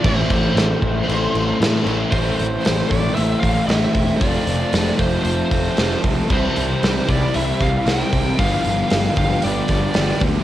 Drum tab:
CC |x-x-x-x-x-x-x-x-|----------------|----------------|x---------------|
HH |----------------|o-o-o-o-o-o-o-o-|o-o-o-o-o-o-o-o-|--o-o-o-o-o-o-o-|
SD |----oo------o---|----o-------o---|----o-------o---|----o-------o---|
BD |o-o---o---------|o-----o---o---o-|o-----o---o---o-|o-----o---o---o-|

CC |----------------|
HH |o-o-o-o-o-o-o-o-|
SD |----o-----o-o---|
BD |o-----o---o---o-|